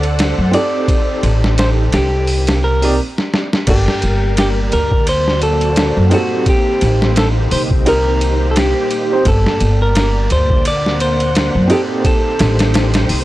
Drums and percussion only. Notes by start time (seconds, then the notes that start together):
0.03 ride
0.19 snare, ride
0.54 ride
0.88 kick, ride
1.23 ride
1.44 snare
1.58 snare, ride
1.92 snare, ride
2.27 open hi-hat
2.47 snare, ride
2.82 open hi-hat
3.18 snare
3.34 snare
3.53 snare
3.67 kick, crash, ride
3.88 snare
4.02 ride
4.37 snare, ride
4.72 ride
4.92 kick
5.07 ride
5.28 snare
5.42 ride
5.61 ride
5.76 snare, ride
6.11 ride
6.46 kick, ride
6.81 ride
7.02 snare
7.16 snare, ride
7.51 open hi-hat
7.71 kick
7.86 ride
8.21 ride
8.56 snare, ride
8.91 ride
9.25 kick, ride
9.46 snare
9.60 ride
9.95 snare, ride
10.30 ride
10.50 kick
10.65 ride
10.86 snare
11.00 ride
11.20 ride
11.35 snare, ride
11.70 ride
12.05 kick, ride
12.39 snare, ride
12.59 snare, ride
12.74 snare, ride
12.94 snare, ride
13.09 open hi-hat